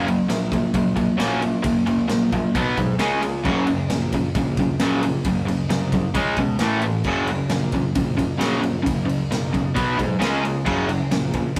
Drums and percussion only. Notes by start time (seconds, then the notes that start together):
0.08 ride
0.30 snare, ride
0.52 kick, ride
0.74 kick, ride
0.96 kick, ride
1.20 snare, ride
1.42 ride
1.64 kick, ride
1.87 ride
2.09 snare, ride
2.32 kick, ride
2.55 kick, ride
2.77 kick, ride
2.99 snare, ride
3.22 ride
3.45 kick, crash
3.67 ride
3.90 snare, ride
4.12 kick, ride
4.35 kick, ride
4.57 kick, ride
4.80 snare, ride
5.03 ride
5.24 kick, ride
5.48 ride
5.70 snare, ride
5.92 kick, ride
6.15 kick, ride
6.36 kick, ride
6.59 snare, ride
6.82 ride
7.04 kick, crash
7.27 ride
7.50 snare, ride
7.72 kick, ride
7.95 kick, ride
8.18 kick, ride
8.41 snare, ride
8.63 ride
8.86 kick, ride
9.09 ride
9.32 snare, ride
9.54 kick, ride
9.76 kick, ride
9.99 kick, ride
10.22 snare, ride
10.45 ride
10.66 kick, crash
10.89 ride
11.11 snare, ride
11.34 kick, ride
11.56 kick, ride